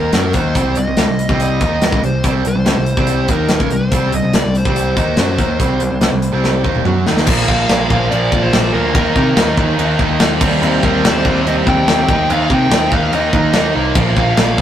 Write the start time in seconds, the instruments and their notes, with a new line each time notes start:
Already playing: picked electric bass D#2, overdriven electric guitar D#3 A#3 D#4, lead electric guitar A#4
0.12 picked electric bass F#2, overdriven electric guitar F#3 C#4 F#4, snare, closed hi-hat
0.33 picked electric bass D#2, overdriven electric guitar D#3 A#3 D#4, lead electric guitar C5, kick, closed hi-hat
0.55 picked electric bass C2, overdriven electric guitar C3 G3 C4, kick, closed hi-hat
0.75 picked electric bass C2, overdriven electric guitar C3 G3, lead electric guitar D#5, closed hi-hat
0.87 picked electric bass C2, overdriven electric guitar C3 G3
0.97 picked electric bass C#2, overdriven electric guitar C#3 G#3, snare, closed hi-hat
1.08 picked electric bass C2, overdriven electric guitar C3 G3
1.19 closed hi-hat
1.29 picked electric bass C2, overdriven electric guitar C3 G3 C4, kick
1.40 lead electric guitar D#5, closed hi-hat
1.60 picked electric bass D#2, overdriven electric guitar D#3 A#3 D#4, kick, closed hi-hat
1.82 snare, closed hi-hat
1.92 picked electric bass C#2, overdriven electric guitar C#3 G#3, kick
2.03 picked electric bass C2, overdriven electric guitar C3 G3, lead electric guitar C5, closed hi-hat
2.24 picked electric bass C2, overdriven electric guitar C3 G3 C4, lead electric guitar C5, kick, closed hi-hat
2.44 picked electric bass C2, overdriven electric guitar C3 G3, lead electric guitar C5, closed hi-hat
2.55 picked electric bass C2, overdriven electric guitar C3 G3
2.65 picked electric bass C#2, overdriven electric guitar C#3 G#3, snare, closed hi-hat
2.77 picked electric bass C2, overdriven electric guitar C3 G3
2.86 closed hi-hat
2.97 picked electric bass C2, overdriven electric guitar C3 G3 C4, kick
3.07 closed hi-hat
3.28 picked electric bass D#2, overdriven electric guitar D#3 A#3 D#4, lead electric guitar A#4, kick, closed hi-hat
3.49 snare, closed hi-hat
3.60 picked electric bass C#2, overdriven electric guitar C#3 G#3, kick
3.70 picked electric bass C2, overdriven electric guitar C3 G3, lead electric guitar C5, closed hi-hat
3.92 picked electric bass C2, overdriven electric guitar C3 G3 C4, kick, closed hi-hat
4.12 picked electric bass C2, overdriven electric guitar C3 G3, lead electric guitar D#5, closed hi-hat
4.23 picked electric bass C2, overdriven electric guitar C3 G3
4.33 picked electric bass C#2, overdriven electric guitar C#3 G#3, lead electric guitar D5, snare, closed hi-hat
4.44 picked electric bass C2, overdriven electric guitar C3 G3
4.55 lead electric guitar C5, closed hi-hat
4.65 picked electric bass C2, overdriven electric guitar C3 G3 C4, kick
4.76 closed hi-hat
4.95 picked electric bass D#2, overdriven electric guitar D#3 A#3 D#4, kick, closed hi-hat
5.17 picked electric bass F#2, overdriven electric guitar F#3 C#4 F#4, snare, closed hi-hat
5.38 picked electric bass D#2, overdriven electric guitar D#3 A#3 D#4, kick, closed hi-hat
5.60 picked electric bass C2, overdriven electric guitar C3 G3 C4, kick, closed hi-hat
5.80 picked electric bass C2, overdriven electric guitar C3 G3, closed hi-hat
5.91 picked electric bass C2, overdriven electric guitar C3 G3
6.01 picked electric bass C#2, overdriven electric guitar C#3 G#3, snare, closed hi-hat
6.12 picked electric bass C2, overdriven electric guitar C3 G3
6.22 closed hi-hat
6.32 picked electric bass C2, overdriven electric guitar C3 G3 C4
6.44 snare
6.63 picked electric bass D#2, overdriven electric guitar D#3 A#3 D#4, kick
6.75 mid tom
6.85 picked electric bass F#2, overdriven electric guitar F#3 C#4 F#4, mid tom
7.07 picked electric bass D#2, overdriven electric guitar D#3 A#3 D#4, snare
7.17 snare
7.27 picked electric bass A#1, overdriven electric guitar A#2 F3 A#3, kick, crash
7.48 picked electric bass A#1, overdriven electric guitar A#2 F3 A#3, lead electric guitar F5, kick
7.69 picked electric bass A#1, overdriven electric guitar A#2 F3 A#3, snare, crash
7.90 picked electric bass A#1, overdriven electric guitar A#2 F3 A#3, kick
8.10 picked electric bass A#1, overdriven electric guitar A#2 F3 A#3, lead electric guitar D5, crash
8.32 picked electric bass A#1, overdriven electric guitar A#2 F3 A#3, kick
8.43 lead electric guitar C5
8.52 picked electric bass A#1, overdriven electric guitar A#2 F3 A#3, snare, crash
8.73 picked electric bass D2, overdriven electric guitar A#2 F3 A#3, lead electric guitar A#4
8.95 picked electric bass D#2, overdriven electric guitar D#3 A#3 D#4, lead electric guitar A#4, kick, crash
9.14 picked electric bass C3, overdriven electric guitar D#3 A#3 D#4, kick
9.35 picked electric bass D#2, overdriven electric guitar D#3 A#3 D#4, snare, crash
9.57 picked electric bass D#2, overdriven electric guitar D#3 A#3 D#4, kick
9.78 picked electric bass D#2, overdriven electric guitar D#3 A#3 D#4, crash
9.99 picked electric bass D#2, overdriven electric guitar D#3 A#3 D#4, kick
10.20 picked electric bass D#2, overdriven electric guitar D#3 A#3 D#4, snare, crash
10.41 picked electric bass D#2, overdriven electric guitar C3 G3 C4, kick, crash
10.61 picked electric bass D#2, overdriven electric guitar C3 G3 C4, crash
10.83 picked electric bass D#2, overdriven electric guitar C3 G3 C4, lead electric guitar A#4, kick
11.04 picked electric bass D#2, overdriven electric guitar C3 G3 C4, lead electric guitar C5, snare, crash
11.25 picked electric bass D#2, overdriven electric guitar C3 G3 C4, kick
11.45 picked electric bass D#2, overdriven electric guitar C3 G3 C4, lead electric guitar D#5, crash
11.67 picked electric bass D#2, overdriven electric guitar C3 G3 C4, lead electric guitar G5, kick
11.86 picked electric bass D#2, overdriven electric guitar C3, snare, crash
11.90 overdriven electric guitar G3 C4
12.09 picked electric bass D#2, overdriven electric guitar D#3 A#3 D#4, kick
12.29 picked electric bass D#2, overdriven electric guitar D#3 A#3 D#4, lead electric guitar F5, crash
12.50 picked electric bass C3, overdriven electric guitar D#3 A#3 D#4, lead electric guitar G5, kick
12.70 picked electric bass D#2, overdriven electric guitar D#3 A#3 D#4, snare, crash
12.92 picked electric bass D#2, overdriven electric guitar D#3 A#3 D#4, lead electric guitar F5, kick
13.12 picked electric bass D#2, overdriven electric guitar D#3 A#3 D#4, lead electric guitar D#5, crash
13.33 picked electric bass D#2, overdriven electric guitar D#3 A#3 D#4, kick
13.53 picked electric bass D#2, overdriven electric guitar D#3 A#3 D#4, snare, crash
13.74 picked electric bass C2, overdriven electric guitar D#3 A#3 D#4
13.95 picked electric bass A#1, overdriven electric guitar A#2 F3 A#3, kick, crash
14.16 picked electric bass A#1, overdriven electric guitar A#2 F3 A#3, lead electric guitar F5, kick
14.37 picked electric bass A#1, overdriven electric guitar A#2 F3 A#3, snare, crash
14.58 overdriven electric guitar A#2 F3, kick